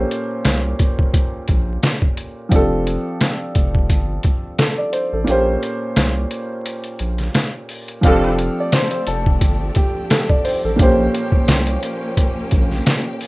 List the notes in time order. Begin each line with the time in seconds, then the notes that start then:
Already playing: A#2 A#3 C#4 G4 A4 C5
0.11 closed hi-hat
0.45 C2, snare, closed hi-hat, tambourine
0.79 kick, closed hi-hat
0.99 kick
1.14 kick, closed hi-hat
1.48 A#1, kick, closed hi-hat
1.83 snare, closed hi-hat, tambourine
2.02 kick
2.17 closed hi-hat
2.49 F1 F3 C4 D4, kick, closed hi-hat
2.54 G4 A4
2.87 closed hi-hat
3.21 snare, closed hi-hat, tambourine
3.55 F1, kick, closed hi-hat
3.75 kick
3.89 G1, kick, closed hi-hat
4.23 kick, closed hi-hat
4.59 A4, snare, closed hi-hat, tambourine
4.78 D5
4.92 C5, closed hi-hat
5.13 A1 A4
5.24 A#1 A#2 A#3 C#4, closed hi-hat
5.29 G4 C5
5.63 closed hi-hat
5.96 C2, snare, closed hi-hat, tambourine
6.31 closed hi-hat
6.66 closed hi-hat
6.84 closed hi-hat
6.99 A#1, closed hi-hat
7.18 snare, closed hi-hat
7.34 snare, closed hi-hat, tambourine
7.69 open hi-hat
7.88 closed hi-hat
8.01 F1 D3 F3 A3 C4 D4 G4 A4 F5, kick, closed hi-hat
8.06 G4 A4
8.38 closed hi-hat
8.60 D5
8.72 C5, snare, closed hi-hat, tambourine
8.91 C5, closed hi-hat
9.07 F1 A4, closed hi-hat
9.26 kick
9.41 G1, kick, closed hi-hat
9.75 G4, kick, closed hi-hat
10.10 A4, snare, closed hi-hat, tambourine
10.29 D5, kick
10.44 C5, open hi-hat
10.64 A1 A4
10.76 A#1 A#2 A#3 C#4, kick, closed hi-hat
10.81 G4 C5
11.14 closed hi-hat
11.32 kick
11.48 C2, snare, closed hi-hat, tambourine
11.67 closed hi-hat
11.83 closed hi-hat
12.17 kick, closed hi-hat
12.51 A#1, kick, closed hi-hat
12.71 snare
12.86 snare, closed hi-hat, tambourine
13.21 open hi-hat